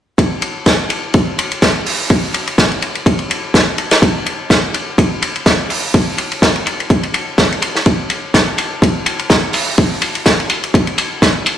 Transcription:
0.18 kick loud
0.18 ride medium
0.42 open hi-hat loud
0.42 ride medium
0.66 kick loud
0.66 snare loud
0.66 ride medium
0.90 open hi-hat loud
0.90 ride medium
1.14 kick loud
1.14 ride medium
1.38 open hi-hat medium
1.38 ride medium
1.51 ride soft
1.62 kick loud
1.62 snare loud
1.62 ride medium
1.86 open hi-hat loud
1.86 open hi-hat medium
2.10 kick loud
2.10 ride medium
2.34 open hi-hat loud
2.34 ride medium
2.47 ride soft
2.58 kick loud
2.58 snare loud
2.58 ride medium
2.71 ride soft
2.82 open hi-hat loud
2.82 ride medium
2.95 ride soft
3.06 kick loud
3.06 ride medium
3.19 ride soft
3.30 open hi-hat loud
3.30 ride medium
3.54 kick loud
3.54 snare loud
3.54 ride medium
3.78 open hi-hat loud
3.78 ride medium
3.91 snare medium
3.91 ride medium
4.02 kick loud
4.02 ride medium
4.26 open hi-hat loud
4.26 ride medium
4.50 kick loud
4.50 snare loud
4.50 ride medium
4.74 open hi-hat loud
4.74 ride medium
4.98 kick loud
4.98 ride medium
5.22 open hi-hat loud
5.22 ride medium
5.36 ride soft
5.46 kick loud
5.46 snare loud
5.46 ride medium
5.70 open hi-hat medium
5.70 open hi-hat loud
5.94 kick loud
5.94 ride medium
6.18 open hi-hat loud
6.18 ride medium
6.32 ride soft
6.42 kick loud
6.42 snare loud
6.42 ride medium
6.56 ride soft
6.66 open hi-hat loud
6.66 ride medium
6.80 ride soft
6.90 kick loud
6.90 ride medium
7.03 open hi-hat medium
7.03 ride soft
7.14 open hi-hat loud
7.14 ride medium
7.38 kick loud
7.38 snare loud
7.38 ride medium
7.52 ride soft
7.62 open hi-hat loud
7.62 ride medium
7.75 snare soft
7.86 kick loud
7.86 ride medium
8.10 open hi-hat loud
8.10 ride medium
8.34 kick loud
8.34 snare loud
8.34 ride medium
8.58 open hi-hat medium
8.58 ride medium
8.82 kick loud
8.82 ride medium
9.06 open hi-hat loud
9.06 ride medium
9.19 ride soft
9.30 kick loud
9.30 snare loud
9.30 ride medium
9.53 open hi-hat medium
9.53 open hi-hat loud
9.78 kick loud
9.78 ride medium
10.02 open hi-hat loud
10.02 ride medium
10.15 ride soft
10.26 kick loud
10.26 snare loud
10.26 ride medium
10.40 ride soft
10.50 open hi-hat medium
10.50 ride medium
10.63 ride soft
10.74 kick loud
10.74 ride medium
10.87 ride soft
10.98 open hi-hat loud
10.98 ride medium
11.22 kick loud
11.22 snare medium
11.22 ride medium
11.46 open hi-hat loud
11.46 ride medium

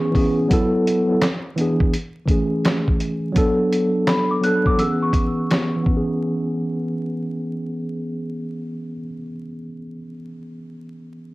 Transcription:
0.00 0.11 E3 medium
0.00 0.13 B3 medium
0.00 0.15 C#4 medium
0.00 0.17 G#4 loud
0.00 0.34 C#6 medium
0.11 0.41 E3 medium
0.11 0.41 B3 medium
0.11 0.42 C#4 medium
0.11 kick medium
0.11 open hi-hat soft
0.17 0.43 G#4 medium
0.48 0.86 F#3 loud
0.48 0.86 B3 medium
0.48 0.87 E4 medium
0.48 kick loud
0.48 closed hi-hat loud
0.53 0.88 A4 loud
0.87 closed hi-hat medium
1.07 1.21 F#3 medium
1.07 1.22 B3 medium
1.07 1.23 E4 medium
1.12 1.24 A4 medium
1.21 snare loud
1.21 clap medium
1.21 closed hi-hat medium
1.56 1.93 E3 medium
1.56 1.93 B3 medium
1.56 1.94 D4 medium
1.56 closed hi-hat medium
1.61 1.95 G#4 medium
1.80 kick medium
1.93 closed hi-hat medium
2.26 3.00 E3 medium
2.26 3.01 A3 medium
2.26 3.02 C#4 medium
2.26 kick loud
2.26 closed hi-hat medium
2.31 3.03 G#4 medium
2.65 snare loud
2.65 clap medium
2.65 closed hi-hat medium
2.88 kick medium
3.00 closed hi-hat medium
3.32 4.07 F#3 loud
3.32 4.08 B3 loud
3.32 4.09 D4 loud
3.32 kick loud
3.32 closed hi-hat medium
3.38 4.10 A4 loud
3.72 closed hi-hat medium
4.07 4.30 B5 medium
4.07 snare loud
4.07 clap medium
4.07 closed hi-hat medium
4.31 4.43 D6 medium
4.41 4.58 F#3 medium
4.41 4.59 B3 medium
4.41 4.59 D4 medium
4.41 4.65 F#6 medium
4.41 closed hi-hat medium
4.46 4.60 A4 medium
4.64 4.78 F#3 medium
4.64 4.77 B3 medium
4.64 4.80 D4 medium
4.64 4.78 D6 medium
4.64 kick medium
4.69 4.81 A4 medium
4.77 5.75 E3 medium
4.77 5.82 B3 medium
4.77 5.87 C#4 medium
4.77 5.01 E6 medium
4.77 closed hi-hat medium
4.82 5.88 G#4 medium
5.02 6.05 C#6 medium
5.13 kick loud
5.13 closed hi-hat medium
5.51 snare loud
5.51 clap medium
5.51 closed hi-hat medium
5.76 8.94 E3 medium
5.83 9.01 B3 medium
5.83 kick medium
5.90 9.08 C#4 medium
5.97 9.15 G#4 medium

